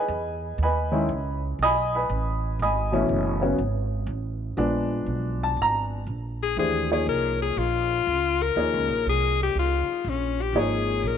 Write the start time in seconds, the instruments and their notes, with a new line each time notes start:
Already playing: upright piano G#4 B4 D#5 G#5
0.08 upright bass E2
0.58 upright bass D#2
0.63 upright piano B4 D#5 G#5 B5
0.91 upright piano D#3 G#3 C#4 E4
1.09 upright bass C#2
1.59 upright bass B1, upright piano D#5 G#5 D#6
1.64 upright piano B5
1.95 upright piano B4 D#5 G#5 B5
2.09 upright bass A1
2.59 upright bass G#1, upright piano D#5 G#5 B5 D#6
2.92 upright piano B2 E3 A3 C#4
3.09 upright bass F#1
3.41 upright piano C#3 F#3 B3 C#4
3.59 upright bass G#1
4.07 upright bass A1
4.57 upright bass A#1, upright piano F3 G#3 B3 D4
5.06 upright bass B1
5.43 upright piano A5
5.57 upright bass G#1
5.62 upright piano A#5
6.07 upright bass A#1
6.43 alto saxophone G#4
6.57 upright bass D#2, upright piano E3 A3 D4 G4 C5, alto saxophone G#4
6.91 upright piano F3 A#3 D#4 G#4 C#5, alto saxophone G#4
7.06 upright bass C2, alto saxophone A#4
7.42 alto saxophone G#4
7.56 upright bass A#1, alto saxophone F4
8.07 upright bass C#2
8.42 alto saxophone A#4
8.56 upright bass D#2, upright piano F3 A#3 D#4 G#4 C#5
8.74 upright bass C#2
8.88 upright bass A#1
9.06 upright bass C2, alto saxophone G#4
9.43 alto saxophone G4
9.55 upright bass C#2
9.59 alto saxophone F4
9.88 muted upright bass stroke
10.04 upright bass A#1
10.09 alto saxophone C#4
10.42 alto saxophone G4
10.53 upright bass G#1, upright piano F3 A#3 D#4 G#4 C#5
10.59 alto saxophone G#4
11.03 upright bass A#1, alto saxophone A#4